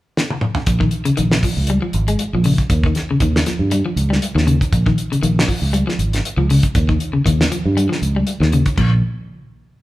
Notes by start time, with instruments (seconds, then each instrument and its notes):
0.17 snare
0.30 high tom
0.41 mid tom
0.55 floor tom
0.66 fingered electric bass A#1, kick, closed hi-hat
0.80 clean electric guitar D#3, kick
0.91 closed hi-hat
1.05 clean electric guitar C#3, closed hi-hat
1.17 fingered electric bass A#1, clean electric guitar D#3, closed hi-hat
1.31 snare
1.43 clean electric guitar F3, kick, open hi-hat
1.57 fingered electric bass C#2
1.67 clean electric guitar G3, closed hi-hat
1.82 clean electric guitar F3
1.93 fingered electric bass G#1, closed hi-hat
2.08 clean electric guitar G#3, closed hi-hat
2.19 closed hi-hat
2.33 fingered electric bass A#1, clean electric guitar F3
2.44 clean electric guitar C#3, open hi-hat
2.58 kick, closed hi-hat
2.70 fingered electric bass D#2, kick, closed hi-hat
2.84 clean electric guitar D#3, kick
2.95 snare, closed hi-hat
3.11 clean electric guitar C#3
3.20 fingered electric bass D#2, clean electric guitar D#3, kick, closed hi-hat
3.36 snare
3.46 clean electric guitar F3, snare, closed hi-hat
3.59 fingered electric bass G2
3.71 clean electric guitar G3, closed hi-hat
3.86 clean electric guitar F3
3.96 fingered electric bass C#2, closed hi-hat
4.10 clean electric guitar G3, snare
4.22 closed hi-hat
4.35 fingered electric bass D#2, clean electric guitar D#3, snare
4.47 clean electric guitar C#3, closed hi-hat
4.61 kick, closed hi-hat
4.72 fingered electric bass A#1, kick, closed hi-hat
4.86 clean electric guitar D#3, kick
4.98 closed hi-hat
5.12 clean electric guitar C#3, closed hi-hat
5.23 fingered electric bass A#1, clean electric guitar D#3, closed hi-hat
5.39 snare
5.48 clean electric guitar F3, kick, open hi-hat
5.62 fingered electric bass C#2
5.73 clean electric guitar G3, closed hi-hat
5.87 clean electric guitar F3, snare
5.99 fingered electric bass G#1, closed hi-hat
6.13 snare, closed hi-hat
6.25 closed hi-hat
6.37 fingered electric bass C#2, clean electric guitar F3
6.50 clean electric guitar C#3, open hi-hat
6.63 kick, closed hi-hat
6.75 fingered electric bass D#2, kick, closed hi-hat
6.89 clean electric guitar D#3, kick
7.00 closed hi-hat
7.13 clean electric guitar C#3
7.26 fingered electric bass D#2, clean electric guitar D#3, kick, closed hi-hat
7.41 snare
7.52 clean electric guitar F3, closed hi-hat
7.66 fingered electric bass G2
7.77 clean electric guitar G3, closed hi-hat
7.89 clean electric guitar F3, snare
8.02 fingered electric bass C#2, closed hi-hat
8.16 clean electric guitar G3
8.27 closed hi-hat
8.40 fingered electric bass D#2, clean electric guitar D#3, snare
8.52 clean electric guitar C#3, closed hi-hat
8.66 kick, closed hi-hat
8.78 fingered electric bass A#1, clean electric guitar A#2, kick, crash